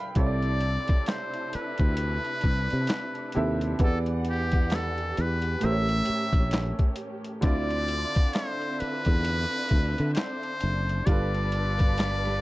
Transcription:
0.00 0.12 G3 medium
0.00 0.13 G3 medium
0.00 0.12 D4 medium
0.00 0.13 F4 medium
0.00 0.13 A4 medium
0.00 0.14 A4 medium
0.00 0.13 B4 loud
0.00 0.14 B4 medium
0.00 0.18 E5 medium
0.00 0.18 F5 medium
0.00 0.18 G5 medium
0.00 0.13 B5 medium
0.15 0.77 C2 medium
0.15 3.30 C3 medium
0.15 3.76 C3 medium
0.15 3.76 A3 medium
0.15 3.30 C4 medium
0.15 5.58 D4 medium
0.15 3.76 E4 medium
0.15 3.31 E4 medium
0.15 3.32 A4 medium
0.15 1.10 D5 loud
0.15 kick loud
0.15 closed hi-hat medium
0.20 0.26 C#5 soft
0.27 3.36 D5 medium
0.42 closed hi-hat soft
0.61 closed hi-hat medium
0.88 muted fingered electric bass stroke soft
0.88 kick medium
0.88 closed hi-hat soft
1.06 1.57 C5 medium
1.06 snare loud
1.06 clap medium
1.06 closed hi-hat medium
1.34 closed hi-hat soft
1.53 3.81 B4 medium
1.53 muted fingered electric bass stroke soft
1.53 closed hi-hat medium
1.78 2.18 D2 medium
1.78 kick medium
1.78 closed hi-hat medium
1.97 closed hi-hat medium
2.25 closed hi-hat soft
2.41 kick medium
2.41 closed hi-hat medium
2.45 2.67 C2 medium
2.70 2.87 C3 medium
2.70 closed hi-hat soft
2.87 snare loud
2.87 clap medium
2.87 closed hi-hat medium
3.15 closed hi-hat soft
3.32 3.80 C3 medium
3.32 3.80 C4 medium
3.32 3.81 E4 medium
3.32 closed hi-hat medium
3.37 3.73 D#2 medium
3.37 3.81 A4 medium
3.37 3.81 E5 medium
3.61 closed hi-hat medium
3.79 5.13 E2 medium
3.79 5.58 E3 medium
3.79 5.60 E3 medium
3.79 5.58 B3 medium
3.79 7.40 G4 medium
3.79 5.59 F#5 medium
3.79 kick loud
3.79 closed hi-hat medium
3.83 5.60 G4 soft
3.83 3.99 A4 medium
3.83 5.60 D5 medium
4.06 closed hi-hat soft
4.25 closed hi-hat medium
4.30 4.77 G4 medium
4.52 kick medium
4.52 closed hi-hat soft
4.70 snare loud
4.70 clap medium
4.70 closed hi-hat medium
4.75 5.22 A4 loud
4.98 closed hi-hat soft
5.17 5.55 E2 medium
5.17 5.66 B4 medium
5.17 closed hi-hat medium
5.42 closed hi-hat soft
5.60 6.00 A1 loud
5.60 7.39 A2 medium
5.60 7.40 A3 medium
5.60 7.42 A3 medium
5.60 7.42 C#4 medium
5.60 7.40 G4 soft
5.60 closed hi-hat medium
5.64 7.41 A#4 medium
5.64 5.71 C5 medium
5.64 7.00 E5 loud
5.72 7.45 C#5 medium
5.89 closed hi-hat soft
6.05 closed hi-hat medium
6.10 muted fingered electric bass stroke soft
6.33 6.72 A#1 medium
6.33 kick medium
6.33 closed hi-hat soft
6.51 snare loud
6.51 clap medium
6.51 closed hi-hat medium
6.79 kick medium
6.79 closed hi-hat soft
6.96 closed hi-hat medium
7.25 closed hi-hat medium
7.41 8.04 D2 medium
7.41 11.02 D3 medium
7.41 11.03 D3 medium
7.41 11.03 C4 medium
7.41 12.41 D4 medium
7.41 11.03 E4 medium
7.41 8.35 D5 loud
7.41 11.03 E5 medium
7.41 kick loud
7.41 closed hi-hat medium
7.45 11.04 F4 medium
7.45 11.05 D5 medium
7.70 closed hi-hat soft
7.88 closed hi-hat medium
8.15 muted fingered electric bass stroke soft
8.15 kick loud
8.15 closed hi-hat soft
8.33 8.81 C5 loud
8.33 snare loud
8.33 clap medium
8.33 closed hi-hat medium
8.62 closed hi-hat soft
8.80 10.13 B4 loud
8.80 muted fingered electric bass stroke soft
8.80 closed hi-hat medium
9.05 9.45 E2 medium
9.05 kick medium
9.05 closed hi-hat medium
9.25 closed hi-hat medium
9.52 closed hi-hat soft
9.69 9.94 D2 medium
9.69 kick medium
9.69 closed hi-hat medium
9.98 10.14 D3 medium
9.98 closed hi-hat soft
10.14 11.07 C5 loud
10.14 snare loud
10.14 clap medium
10.14 closed hi-hat medium
10.43 closed hi-hat soft
10.60 11.00 F#1 medium
10.60 closed hi-hat medium
10.89 closed hi-hat soft
11.06 12.40 G1 loud
11.06 12.41 G3 medium
11.06 12.41 D4 medium
11.06 12.41 F4 medium
11.06 12.41 A4 medium
11.06 12.41 B4 medium
11.06 12.41 D5 loud
11.06 kick loud
11.06 closed hi-hat medium
11.10 12.41 A4 medium
11.10 12.41 B4 medium
11.34 closed hi-hat soft
11.52 closed hi-hat medium
11.79 kick medium
11.79 closed hi-hat soft
11.98 snare loud
11.98 clap medium
11.98 closed hi-hat medium
12.25 snare soft
12.25 closed hi-hat soft

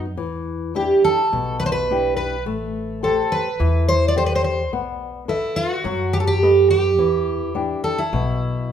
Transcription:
0.00 0.15 F#2 medium
0.15 0.91 E2 medium
0.15 0.73 E3 medium
0.75 1.21 D4 soft
0.75 1.21 E4 soft
0.75 1.21 G4 medium
0.75 1.02 G4 medium
1.04 1.57 A4 medium
1.32 2.46 B1 medium
1.32 1.88 B2 medium
1.60 1.66 B4 loud
1.66 1.72 C5 medium
1.72 2.15 B4 loud
1.90 2.35 D4 soft
1.90 2.36 E4 soft
1.90 2.36 G4 soft
2.17 2.44 B4 medium
2.46 3.20 A1 medium
2.46 3.01 A3 medium
3.03 3.48 G4 soft
3.03 3.49 A4 soft
3.03 3.33 A4 medium
3.03 3.49 C5 medium
3.32 3.88 B4 loud
3.60 4.72 E2 medium
3.60 4.15 E3 medium
3.89 4.08 C5 loud
4.08 4.17 D5 medium
4.16 4.61 G4 soft
4.16 4.62 A4 soft
4.16 4.62 C5 soft
4.16 4.26 C5 medium
4.26 4.35 B4 loud
4.35 4.43 C5 medium
4.44 4.71 C5 medium
4.72 5.45 B1 medium
4.72 5.27 B3 medium
5.28 5.58 E4 medium
5.28 5.73 A4 soft
5.28 5.73 B4 soft
5.28 5.74 D#5 medium
5.56 6.15 F#4 medium
5.84 6.97 F#2 medium
5.84 6.40 F#3 medium
6.13 6.20 G4 loud
6.20 6.27 A4 medium
6.27 6.69 G4 loud
6.43 6.88 A4 soft
6.43 6.87 B4 soft
6.43 6.88 D#5 soft
6.70 7.80 G4 medium
6.97 7.72 E2 medium
6.97 7.54 E3 medium
7.55 8.01 D4 soft
7.55 8.01 E4 soft
7.55 8.02 G4 medium
7.84 7.99 A4 medium
7.98 8.72 E4 medium
8.13 8.72 B1 medium
8.13 8.71 B2 medium

